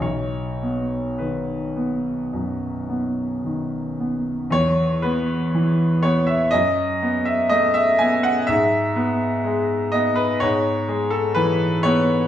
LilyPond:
<<
  \new Staff \with { instrumentName = "Grand piano" } { \time 4/4 \key e \major \tempo 4 = 60 cis''4 b'2 r4 | cis''8 b'4 cis''16 e''16 dis''8. e''16 dis''16 e''16 gis''16 fis''16 | e''4. dis''16 b'16 cis''8. a'16 b'8 cis''8 | }
  \new Staff \with { instrumentName = "Grand piano" } { \clef bass \time 4/4 \key e \major b,,8 b8 dis8 b8 fis,8 b8 dis8 b8 | e,8 b8 e8 b8 fis,8 b8 a8 b8 | gis,8 b8 gis8 b8 gis,8 gis8 e8 b8 | }
>>